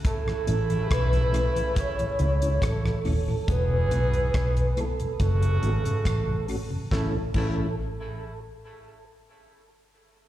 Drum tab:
CC |----------------|----------------|--x-------------|
HH |x-xxxxxxxxxxx-o-|x-xxxxxxxxxxx-o-|----------------|
SD |-r--r-------rr--|----r-------r---|o---------------|
BD |o---o---o---o---|o---o---o---o---|o-o-------------|